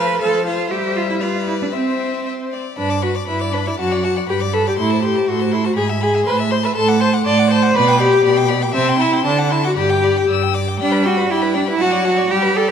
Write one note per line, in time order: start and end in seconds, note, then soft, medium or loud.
0.00 0.15 F3 medium
0.00 0.21 B4 medium
0.00 0.21 C5 medium
0.00 0.20 F5 medium
0.21 0.66 F3 medium
0.21 0.46 A4 medium
0.21 0.46 C5 soft
0.21 0.45 F5 soft
0.46 0.73 F4 medium
0.46 0.71 C5 soft
0.46 0.70 F5 soft
0.70 1.70 G3 medium
0.70 0.98 G4 medium
0.70 1.23 C5 medium
0.70 1.22 E5 medium
0.97 1.09 F4 medium
1.10 1.15 E4 medium
1.21 1.47 F4 medium
1.21 1.75 B4 soft
1.21 1.74 D5 soft
1.48 1.53 E4 medium
1.62 1.67 D4 soft
1.73 2.55 C4 soft
1.73 2.25 C4 soft
1.73 2.57 C5 soft
1.73 2.20 E5 soft
2.25 2.33 E5 soft
2.52 2.77 D5 soft
2.77 3.23 G2 medium
2.77 3.01 D4 medium
2.77 2.91 B4 soft
2.77 2.92 B5 soft
2.89 3.04 D5 soft
2.89 3.04 D6 soft
3.02 3.10 F#4 medium
3.02 3.17 B4 soft
3.02 3.16 B5 soft
3.15 3.28 D5 soft
3.15 3.27 D6 soft
3.27 3.73 G2 soft
3.27 3.52 E4 soft
3.27 3.43 B4 soft
3.27 3.41 B5 soft
3.40 3.55 D5 soft
3.40 3.54 D6 soft
3.52 3.58 D4 medium
3.52 3.69 B4 soft
3.52 3.67 B5 soft
3.66 3.72 E4 medium
3.66 3.79 D5 soft
3.66 3.79 D6 soft
3.79 4.23 F#2 medium
3.79 4.03 F#4 medium
3.79 3.93 F#5 soft
3.79 3.94 A5 soft
3.91 4.06 D5 soft
3.91 4.06 F#5 soft
4.04 4.12 F#4 medium
4.04 4.18 F#5 soft
4.04 4.18 A5 soft
4.16 4.29 D5 soft
4.16 4.28 F#5 soft
4.29 4.72 G2 medium
4.29 4.37 G4 medium
4.29 4.43 B4 soft
4.29 4.41 B5 soft
4.40 4.55 D5 soft
4.40 4.54 D6 soft
4.53 4.65 A4 medium
4.53 4.69 B4 soft
4.53 4.68 B5 soft
4.67 4.72 G4 medium
4.67 4.79 D5 soft
4.67 4.77 D6 soft
4.77 5.22 A2 medium
4.77 5.02 E4 medium
4.77 4.94 A4 soft
4.77 4.92 C6 soft
4.90 5.07 C5 soft
4.90 5.04 A5 soft
5.03 5.29 G4 medium
5.03 5.19 A4 soft
5.03 5.17 C6 soft
5.16 5.29 C5 soft
5.16 5.28 A5 soft
5.28 5.71 A2 medium
5.28 5.54 F#4 medium
5.28 5.43 A4 soft
5.28 5.42 C6 soft
5.40 5.54 C5 soft
5.40 5.53 A5 soft
5.52 5.64 E4 medium
5.52 5.67 A4 soft
5.52 5.66 C6 soft
5.64 5.70 F#4 medium
5.64 5.77 C5 soft
5.64 5.75 A5 soft
5.76 6.20 G#2 medium
5.76 5.85 G#4 medium
5.76 5.91 G#5 soft
5.76 5.89 B5 soft
5.88 6.04 E5 soft
5.88 6.02 G#5 soft
6.01 6.26 G#4 medium
6.01 6.16 G#5 soft
6.01 6.15 B5 soft
6.14 6.26 E5 soft
6.14 6.25 G#5 soft
6.25 6.70 A2 medium
6.25 6.35 B4 medium
6.25 6.41 C5 soft
6.25 6.39 C6 soft
6.37 6.53 E5 soft
6.37 6.52 A5 soft
6.51 6.56 C5 medium
6.51 6.66 C5 soft
6.51 6.65 C6 soft
6.63 6.69 B4 medium
6.63 6.75 E5 soft
6.63 6.76 A5 soft
6.76 7.20 A2 medium
6.76 7.00 A4 medium
6.76 6.90 A5 medium
6.76 6.90 C6 soft
6.88 7.02 F#5 soft
6.88 7.02 D6 soft
7.00 7.08 C5 medium
7.00 7.15 A5 medium
7.00 7.14 C6 medium
7.12 7.26 F#5 soft
7.12 7.25 D6 soft
7.26 7.70 A2 medium
7.26 7.50 D5 medium
7.26 7.40 A5 soft
7.26 7.40 C6 soft
7.38 7.53 F#5 soft
7.38 7.53 D6 soft
7.50 7.77 C5 medium
7.50 7.64 A5 medium
7.50 7.64 C6 soft
7.62 7.74 F#5 soft
7.62 7.75 D6 medium
7.75 8.19 B2 medium
7.75 8.00 B4 medium
7.75 7.89 D5 medium
7.75 7.90 B5 medium
7.87 8.01 G5 medium
7.87 8.02 D6 medium
7.99 8.49 G4 medium
7.99 8.13 D5 medium
7.99 8.14 B5 medium
8.12 8.23 G5 soft
8.12 8.25 D6 medium
8.24 8.69 B2 medium
8.24 8.38 D5 medium
8.24 8.39 B5 medium
8.37 8.51 G5 medium
8.37 8.50 D6 medium
8.49 8.64 D5 soft
8.49 8.64 B5 medium
8.62 8.74 G5 soft
8.62 8.75 D6 medium
8.74 9.20 C3 medium
8.74 8.98 C4 medium
8.74 8.90 E5 medium
8.74 8.91 A5 medium
8.88 9.03 G5 soft
8.88 9.02 C6 medium
9.00 9.24 E4 medium
9.00 9.15 E5 medium
9.00 9.14 A5 soft
9.13 9.25 G5 soft
9.13 9.25 C6 medium
9.25 9.71 D3 medium
9.25 9.52 D4 medium
9.25 9.40 A5 medium
9.25 9.40 C6 soft
9.38 9.53 F#5 soft
9.38 9.52 D6 soft
9.50 9.64 E4 medium
9.50 9.66 A5 soft
9.50 9.65 C6 soft
9.63 9.71 F#4 medium
9.63 9.76 F#5 soft
9.63 9.75 D6 soft
9.76 10.23 G2 medium
9.76 10.28 G4 medium
9.76 9.91 D5 soft
9.76 9.91 B5 soft
9.90 10.05 G5 soft
9.90 10.06 D6 soft
10.03 10.19 D5 soft
10.03 10.18 B5 soft
10.17 10.29 G5 soft
10.17 10.28 D6 soft
10.29 10.75 G2 medium
10.29 10.44 D5 soft
10.29 10.55 E6 soft
10.42 10.56 G5 soft
10.54 10.69 D5 soft
10.54 10.79 D6 soft
10.68 10.79 G5 soft
10.80 11.25 G3 medium
10.80 11.08 D4 medium
10.80 10.93 D5 soft
10.80 10.93 G5 medium
10.92 11.04 B4 soft
10.92 11.05 B5 soft
11.03 11.32 F#4 medium
11.03 11.19 D5 soft
11.03 11.18 G5 soft
11.17 11.29 B4 soft
11.17 11.29 B5 soft
11.29 11.75 G3 medium
11.29 11.56 E4 medium
11.29 11.44 D5 soft
11.29 11.43 G5 soft
11.41 11.56 B4 soft
11.41 11.56 B5 soft
11.54 11.61 D4 medium
11.54 11.69 D5 soft
11.54 11.67 G5 soft
11.66 11.78 B4 soft
11.66 11.77 B5 soft
11.70 11.83 E4 medium
11.78 12.25 F#3 medium
11.78 12.05 F#4 medium
11.78 11.93 F#5 soft
11.78 11.93 A5 soft
11.91 12.06 D5 soft
11.91 12.06 F#5 soft
12.05 12.32 F#4 medium
12.05 12.19 F#5 soft
12.05 12.19 A5 soft
12.17 12.29 D5 soft
12.17 12.29 F#5 soft
12.30 12.71 G3 medium
12.30 12.58 G4 medium
12.30 12.44 D5 soft
12.30 12.44 G5 soft
12.42 12.56 B4 soft
12.42 12.57 B5 soft
12.54 12.69 A4 medium
12.54 12.70 D5 soft
12.54 12.69 G5 soft
12.67 12.71 B4 soft
12.67 12.71 B5 soft